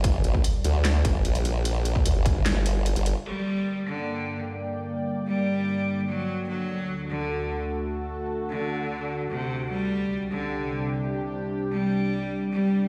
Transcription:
<<
  \new Staff \with { instrumentName = "Analog synth pad" } { \time 4/4 \key g \minor \tempo 4 = 149 << { <g a' bes' d''>1~ | <g a' bes' d''>1 | <g, bes d'' g''>1~ | <g, bes d'' g''>1 |
<d, a fis' a'>1~ | <d, a fis' a'>1 | <c, g d' g'>1~ | <c, g d' g'>1 | } \\ { g'1~ | g'1 | d1~ | d1~ |
d1~ | d1 | c1~ | c1 | } >> }
  \new Staff \with { instrumentName = "Cello" } { \clef bass \time 4/4 \key g \minor r1 | r1 | g4. d4. r4 | r4 g2 fis4 |
fis4. d4. r4 | r4 d2 c4 | g4. d4. r4 | r4 g2 g4 | }
  \new Staff \with { instrumentName = "Wobble bass" } { \clef bass \time 4/4 \key g \minor g,,8 bes,,8 r8 d,4 g,,8 bes,,4~ | bes,,4 d,16 g,,8 g,,4. g,,8 r16 | r1 | r1 |
r1 | r1 | r1 | r1 | }
  \new DrumStaff \with { instrumentName = "Drums" } \drummode { \time 4/4 <hh bd>8 hh16 bd16 hh8 hh8 <hc hh sn>8 <hh bd>8 hh16 hh16 hh8 | hh8 hh16 bd16 hh8 <hh bd>8 <hc hh sn>8 hh8 hh16 hh16 hh8 | cymc4 r4 r4 r4 | r4 r4 r4 r4 |
r4 r4 r4 r4 | r4 r4 r4 r4 | r4 r4 r4 r4 | r4 r4 r4 r4 | }
>>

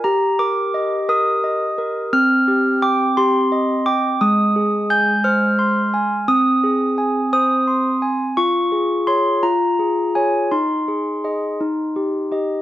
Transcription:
\new Staff \with { instrumentName = "Handbells" } { \time 6/8 \key c \minor \tempo 4. = 57 << { bes''8 d'''4 ees'''4. | f'''4 d'''8 c'''4 d'''8 | \key aes \major ees'''4 g'''8 f'''4. | ees'''4. ees'''4 r8 |
des'''4 c'''8 bes''4 aes''8 | c'''2~ c'''8 r8 | } \\ { g'8 bes'8 ees''8 bes'8 ees''8 bes'8 | c'8 g'8 g''8 g'8 ees''8 g''8 | aes8 aes'8 aes''8 c''8 c'''8 aes''8 | c'8 aes'8 aes''8 c''8 c'''8 aes''8 |
f'8 aes'8 <aes' des''>8 f'8 aes'8 <aes' des''>8 | ees'8 aes'8 <aes' ees''>8 ees'8 g'8 <g' ees''>8 | } >> }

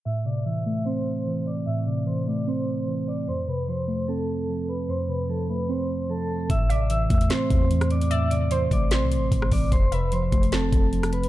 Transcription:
<<
  \new Staff \with { instrumentName = "Vibraphone" } { \time 4/4 \key a \minor \tempo 4 = 149 <e'' e'''>8 <d'' d'''>8 <e'' e'''>8 <e'' e'''>8 <c'' c'''>4. <d'' d'''>8 | <e'' e'''>8 <d'' d'''>8 <c'' c'''>8 <d'' d'''>8 <c'' c'''>4. <d'' d'''>8 | <c'' c'''>8 <b' b''>8 <c'' c'''>8 <c'' c'''>8 <a' a''>4. <b' b''>8 | <c'' c'''>8 <b' b''>8 <a' a''>8 <b' b''>8 <c'' c'''>4 <a' a''>4 |
<e'' e'''>8 <d'' d'''>8 <e'' e'''>8 <e'' e'''>8 <c'' c'''>4. <d'' d'''>8 | <e'' e'''>8 <d'' d'''>8 <c'' c'''>8 <d'' d'''>8 <c'' c'''>4. <d'' d'''>8 | <c'' c'''>8 <b' b''>8 <c'' c'''>8 <c'' c'''>8 <a' a''>4. <b' b''>8 | }
  \new Staff \with { instrumentName = "Synth pluck" } { \time 4/4 \key a \minor r1 | r1 | r1 | r1 |
r8 e''8 r2. | d''4 c''2 r4 | r8 e''8 r2. | }
  \new Staff \with { instrumentName = "Synth keys" } { \clef bass \time 4/4 \key a \minor a,8 c8 e8 a8 c'4 e4 | a,8 c8 e8 a8 c'4 e4 | f,8 c8 f8 a8 c'4 f4 | f,8 c8 f8 a8 c'4 f4 |
a,8 c8 e8 a8 c'4 e4 | a,8 c8 e8 a8 c'4 e4 | f,8 c8 f8 a8 c'4 f4 | }
  \new Staff \with { instrumentName = "808-style bass" } { \clef bass \time 4/4 \key a \minor r1 | r1 | r1 | r1 |
a,,4. e,8 r8 e,4.~ | e,4. a,,8. c,16. a,,16. a,,8 a,,8 | f,,4. f,,4 f,,4. | }
  \new DrumStaff \with { instrumentName = "Drums" } \drummode { \time 4/4 r4 r4 r4 r4 | r4 r4 r4 r4 | r4 r4 r4 r4 | r4 r4 r4 r4 |
<hh bd>8 hh8 hh8 <hh bd>16 hh16 <hh sn>8 <hh bd>8 hh16 <hh ss>16 <hh hho>16 hh16 | hh8 hh8 hh8 <hh bd>8 <hh sn>8 hh8 <hh bd>16 ss16 <hho bd>8 | <hh bd>8 hh8 hh8 <hh bd>16 hh16 <hh sn>8 <hh bd>8 hh16 <hh ss>16 <hh hho>16 hh16 | }
>>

